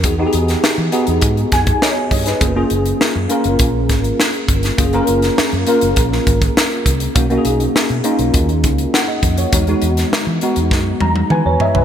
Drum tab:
HH |x-xx--xxxxxx--ox|x-xx--xxx-xx-xxx|xxxx-xxxx-xx-xxx|xxxx-xxxxxxx--xx|
SD |---oo-----o-o--o|----o-----o-o--o|---oo----o--o---|----o-------o---|
T1 |----------------|----------------|----------------|----------------|
T2 |----------------|----------------|----------------|----------------|
FT |----------------|----------------|----------------|----------------|
BD |o-------o-oo--o-|o-------o-o---o-|o-------o-oo--o-|o-------o-o---o-|

HH |xxxx--xx--------|
SD |---oo---o-------|
T1 |----------oo----|
T2 |------------o---|
FT |--------------oo|
BD |o-------o-------|